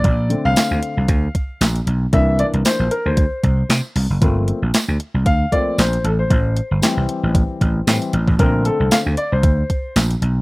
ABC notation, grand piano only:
X:1
M:4/4
L:1/16
Q:"Swing 16ths" 1/4=115
K:Bblyd
V:1 name="Grand piano"
d3 f8- f2 z3 | e2 d2 c2 B c6 z3 | z8 f2 d2 c2 A c- | c4- c z8 z3 |
B2 A2 f2 d c6 z3 |]
V:2 name="Grand piano"
z2 [D,A,C]6 z8 | [E,B,D]6 z8 z2 | [F,A,B,C]2 z8 [F,A,B,C]2 z4 | z4 [E,G,C]8 [E,G,C]2 z2 |
[D,A,C]6 z8 z2 |]